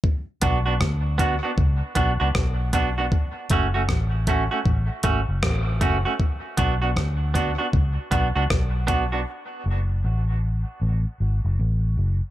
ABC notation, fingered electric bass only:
X:1
M:4/4
L:1/16
Q:"Swing 16ths" 1/4=78
K:Bdor
V:1 name="Fingered electric bass" clef=bass
z2 B,,,2 D,,3 z C,, z B,,, C,, B,,,4 | z2 F,,,2 A,,,3 z A,,, z G,,, F,,, A,,,2 F,,, z | z2 B,,,2 D,,3 z C,, z B,,, C,, B,,,4 | z2 F,,,2 A,,,3 z A,,, z G,,, F,,, A,,,2 F,,, z |]